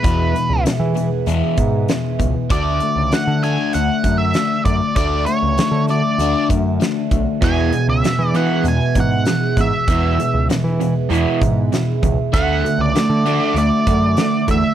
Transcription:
<<
  \new Staff \with { instrumentName = "Lead electric guitar" } { \time 4/4 \key e \mixolydian \tempo 4 = 98 b'4 r2. | d''4 fis''8 gis''8 fis''8. e''8. d''8 | d''8 cis''4 d''4 r4. | gis''8. e''8. fis''8 gis''8 fis''4 e''8~ |
e''4 r2. | fis''8. d''4~ d''16 d''4. e''8 | }
  \new Staff \with { instrumentName = "Twelve-string acoustic guitar" } { \time 4/4 \key e \mixolydian <e, b, e gis b gis'>8 <e gis b gis'>8 <e gis b gis'>8 <e gis b gis'>8 <e, b, e gis b gis'>4 <e gis b gis'>4 | <d a d' fis'>8 <a d' fis'>8 <d a d' fis'>8 <a d' fis'>8 <d a d' fis'>4 <d a d' fis'>4 | <d a d' fis'>4 <d a d' fis'>8 <a d' fis'>8 <d a d' fis'>4 <d a d' fis'>4 | <e, b, e gis b gis'>4 <e gis b gis'>8 <e gis b gis'>8 <e, b, e gis b gis'>4 <e gis b gis'>4 |
<e, b, e gis b gis'>4 <e gis b gis'>8 <e gis b gis'>8 <e, b, e gis b gis'>4 <e gis b gis'>4 | <d a d' fis'>4 <d a d' fis'>8 <a d' fis'>8 <d a d' fis'>4 <d a d' fis'>4 | }
  \new Staff \with { instrumentName = "Overdriven electric guitar" } { \clef bass \time 4/4 \key e \mixolydian <e, b, e>8 <e, b,>8 <e, b,>8 <e, b,>8 <e, b, e>8 <e, b,>8 <e, b,>8 <e, b,>8 | <d a d'>8 <d a>8 <d a>8 <d a d'>8 <d a>8 <d a>8 <d a>8 <d a>8 | <d a d'>8 <d a>8 <d a>8 <d a>8 <d a d'>8 <d a>8 <d a>8 <d a>8 | <e, b, e>8 <e, b,>8 <e, b,>8 <e, b, e>8 <e, b,>8 <e, b,>8 <e, b,>8 <e, b,>8 |
<e, b, e>8 <e, b,>8 <e, b,>8 <e, b,>8 <e, b, e>8 <e, b,>8 <e, b,>8 <e, b,>8 | <d a d'>8 <d a>8 <d a>8 <d a d'>8 <d a>8 <d a>8 <d a>8 <d a>8 | }
  \new Staff \with { instrumentName = "Overdriven electric guitar" } { \clef bass \time 4/4 \key e \mixolydian r1 | r1 | r1 | <e, b, e>8 <e, b,>8 <e, b,>8 <e, b, e>8 <e, b,>8 <e, b,>8 <e, b,>8 <e, b,>8 |
<e, b, e>8 <e, b,>8 <e, b,>8 <e, b,>8 <e, b, e>8 <e, b,>8 <e, b,>8 <e, b,>8 | <d a d'>8 <d a>8 <d a>8 <d a d'>8 <d a>8 <d a>8 <d a>8 <d a>8 | }
  \new Staff \with { instrumentName = "Picked electric bass" } { \clef bass \time 4/4 \key e \mixolydian e,8 r16 cis,16 r16 e8 r16 e,16 r16 gis,8 r8 cis,16 r16 | d,8 r16 cis,16 r16 d8 r16 d,16 r16 fis,8 r8 fis,16 r16 | d,8 r16 cis,16 r16 d8 r16 d,16 r16 fis,8 r8 b,,16 r16 | e,8 r16 cis,16 r16 e8 r16 e,16 r16 gis,8 r8 gis,16 r16 |
e,8 r16 cis,16 r16 e8 r16 e,16 r16 gis,8 r8 cis,16 r16 | d,8 r16 cis,16 r16 d8 r16 d,16 r16 fis,8 r8 e,16 r16 | }
  \new DrumStaff \with { instrumentName = "Drums" } \drummode { \time 4/4 <hh bd>8 hh8 <hh sn>8 hh8 hh8 <hh bd>8 <hh sn>8 <hh bd>8 | <hh bd>8 hh8 <hh sn>8 hh8 hh8 <hh bd>8 <hh sn>8 <hh bd>8 | <hh bd>8 hh8 <hh sn>8 hh8 hh8 <hh bd>8 <hh sn>8 <hh bd>8 | <hh bd>8 hh8 <hh sn>8 hh8 hh8 <hh bd>8 <hh sn>8 <hh bd>8 |
<hh bd>8 hh8 <hh sn>8 hh8 hh8 <hh bd>8 <hh sn>8 <hh bd>8 | <hh bd>8 hh8 <hh sn>8 hh8 hh8 <hh bd>8 <hh sn>8 <hh bd>8 | }
>>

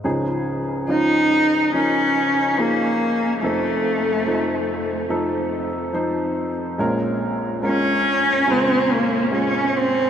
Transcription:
<<
  \new Staff \with { instrumentName = "Grand piano" } { \time 4/4 \key des \major \tempo 4 = 71 <f des' ees' aes'>8 r8 <f des' ees' f'>8 r8 <f des' ees' bes'>8 r8 <f des' ees' aes'>8 r8 | <f c' ees' a'>8 r8 <f c' ees' c''>8 r8 <f c' ees' a'>8 r8 <f c' ees' c''>8 r8 | <aes des' f' bes'>8 r8 <aes des' f' bes'>8 r8 <des aes f' bes'>8 r8 <aes des' f' aes'>8 r8 | }
  \new Staff \with { instrumentName = "Grand piano" } { \clef bass \time 4/4 \key des \major <des, des>1 | <f,, f,>1 | <bes,, bes,>1 | }
  \new Staff \with { instrumentName = "Cello" } { \time 4/4 \key des \major r4 ees'4 des'4 bes4 | a2 r2 | r4 des'4 c'8 bes8 des'8 c'8 | }
>>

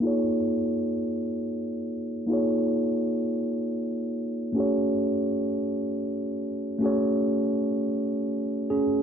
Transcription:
\new Staff \with { instrumentName = "Tine electric piano" } { \time 6/8 \key des \major \tempo 4. = 53 << { r2. | r2. | r2. | r2 r8 <des' aes'>8 | } \\ { <bes ees' f' aes' des''>2. | <bes ees' f' aes' des''>2. | <a des' ges' aes' des''>2. | <a des' ges' aes' des''>2. | } >> }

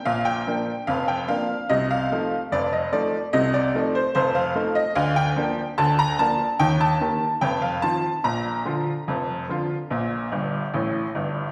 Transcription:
<<
  \new Staff \with { instrumentName = "Upright piano" } { \time 2/4 \key bes \major \tempo 4 = 73 f''16 g''8. f''16 g''16 f''8 | ees''16 f''8. d''16 ees''16 d''8 | ees''16 d''8 c''16 c''16 f''8 ees''16 | f''16 g''8. a''16 bes''16 a''8 |
g''16 a''8. g''16 f''16 a''8 | bes''2~ | bes''4. r8 | }
  \new Staff \with { instrumentName = "Upright piano" } { \clef bass \time 2/4 \key bes \major <bes,, bes,>8 <f bes d'>8 <f,, f,>8 <f bes d'>8 | <c, c>8 <f a ees'>8 <f,, f,>8 <f a ees'>8 | <c, c>8 <f a ees'>8 <f,, f,>8 <f a ees'>8 | <d, d>8 <f bes d'>8 <d, d>8 <f bes d'>8 |
<ees, ees>8 <ees bes g'>8 <f,, f,>8 <ees f f'>8 | <bes,, bes,>8 <d f f'>8 <f,, f,>8 <d f f'>8 | <bes,, bes,>8 <g,, g,>8 <a,, a,>8 <g,, g,>8 | }
>>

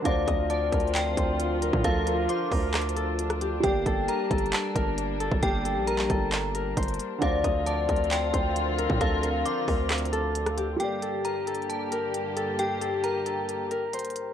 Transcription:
<<
  \new Staff \with { instrumentName = "Synth bell" } { \time 4/4 \key g \minor \tempo 4 = 134 f''4 a''4 g''4 r4 | f''4 d'''2. | g''4 bes''4 a''4 r4 | g''4 bes''2 r4 |
f''4 a''4 g''4 r4 | f''4 d'''2. | g''4 bes''4 a''4 r4 | g''4 bes''2 r4 | }
  \new Staff \with { instrumentName = "Harp" } { \time 4/4 \key g \minor d''8 ees''8 d''8 bes'4 c''4 bes'8 | a'8 bes'8 c''8 bes'8 r8 a'4 g'8 | g'8 a'8 bes'8 a'4 bes'4 a'8 | g'8 a'8 bes'8 a'8 r8 bes'8 c''4 |
d''8 ees''8 d''8 bes'4 c''4 bes'8 | a'8 bes'8 c''8 bes'8 r8 a'4 g'8 | g'8 a'8 bes'8 a'4 bes'4 a'8 | g'8 a'8 bes'8 a'8 r8 bes'8 c''4 | }
  \new Staff \with { instrumentName = "Felt piano" } { \time 4/4 \key g \minor <d d' f' c''>1~ | <d d' f' c''>1 | <g bes g' d''>1~ | <g bes g' d''>1 |
<d d' f' c''>1~ | <d d' f' c''>1 | <g bes g' d''>1~ | <g bes g' d''>1 | }
  \new Staff \with { instrumentName = "String section" } { \time 4/4 \key g \minor << { <d f f'>1~ | <d f f'>1 | g1~ | g1 |
<d f f'>1~ | <d f f'>1 | <g, d g'>1~ | <g, d g'>1 | } \\ { c'1 | d'1 | bes1~ | bes1 |
c'1~ | c'1 | bes1~ | bes1 | } >> }
  \new Staff \with { instrumentName = "808-style bass" } { \clef bass \time 4/4 \key g \minor d,8 d,4 d,4 d,4~ d,16 a,16 | d,4 r8 d,2~ d,8 | g,,8 g,,8 r8 g,,8 r8 g,,4~ g,,16 g,,16 | g,,8. bes,,8. g,,4. g,,8 r8 |
d,8 d,4 d,4 d,4~ d,16 a,16 | d,4 r8 d,2~ d,8 | r1 | r1 | }
  \new DrumStaff \with { instrumentName = "Drums" } \drummode { \time 4/4 <hh bd>8 <hh bd>8 \tuplet 3/2 { hh16 r16 r16 <hh bd>16 hh16 hh16 } <hc hh>8 <hh bd>8 hh8 hh16 bd16 | <hh bd>8 hh8 hh8 <hho bd>8 \tuplet 3/2 { <hc hh ss>16 hh16 hh16 hh16 r16 r16 } hh16 <hh ss>16 hh8 | <hh bd>8 <hh bd>8 \tuplet 3/2 { hh16 r16 r16 <hh bd>16 hh16 hh16 } <hc hh>8 <hh bd>8 hh8 hh16 bd16 | <hh bd>8 hh8 hh16 hc16 <hh bd>8 <hc hh>8 hh8 <hh bd>32 hh32 hh32 hh32 hh8 |
<hh bd>8 <hh bd>8 \tuplet 3/2 { hh16 r16 r16 <hh bd>16 hh16 hh16 } <hc hh>8 <hh bd>8 hh8 hh16 bd16 | <hh bd>8 hh8 hh8 <hho bd>8 \tuplet 3/2 { <hc hh ss>16 hh16 hh16 hh16 r16 r16 } hh16 <hh ss>16 hh8 | hh8 hh8 \tuplet 3/2 { hh16 r16 r16 hh16 hh16 hh16 } hh8 hh8 hh8 hh8 | hh8 hh8 hh8 hh8 hh8 hh8 hh32 hh32 hh32 hh32 hh8 | }
>>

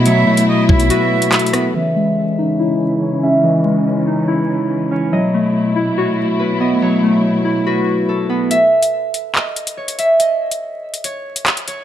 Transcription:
<<
  \new Staff \with { instrumentName = "Flute" } { \time 4/4 \key b \mixolydian \tempo 4 = 142 e''4 dis''8 e''2~ e''8 | r1 | r1 | r1 |
r1 | r1 | r1 | }
  \new Staff \with { instrumentName = "Harp" } { \time 4/4 \key b \mixolydian cis''2 b'4 a'8 b'8 | e''2 dis''4 cis''8 e''8 | dis''2 cis''4. cis''8 | dis''2 cis''4 b'8 dis''8 |
cis''2 b'4 a'8 b'8 | e''2 dis''4 cis''8 e''8 | dis''2 cis''4. cis''8 | }
  \new Staff \with { instrumentName = "Synth keys" } { \time 4/4 \key b \mixolydian <fis b fis'>8 a4 e'8 fis'4. b8 | e8 gis4 dis'8 e'4. cis'8 | e8 gis4 dis'8 e'4. cis'8 | fis8 a4 e'8 fis'4. b8 |
fis8 a4 e'8 fis'4. b8 | r1 | r1 | }
  \new Staff \with { instrumentName = "String section" } { \time 4/4 \key b \mixolydian <b, a e'>1 | <cis e cis'>1~ | <cis e cis'>1 | <b, a e'>1~ |
<b, a e'>1 | r1 | r1 | }
  \new Staff \with { instrumentName = "808-style bass" } { \clef bass \time 4/4 \key b \mixolydian b,8 r4 b,,8 r2 | r1 | r1 | r1 |
r1 | r1 | r1 | }
  \new DrumStaff \with { instrumentName = "Drums" } \drummode { \time 4/4 hh8. hh16 r8 bd16 hh16 hh8. hh16 \tuplet 3/2 { <hc hh>16 hh16 hh16 <hh ss>16 r16 r16 } | r4 r4 r4 r4 | r4 r4 r4 r4 | r4 r4 r4 r4 |
r4 r4 r4 r4 | hh8. hh16 r8 hh8 hc8 hh16 hh16 r16 hh16 hh8 | hh8. hh16 r8. hh16 hh8. hh16 <hc hh>16 hh16 hh8 | }
>>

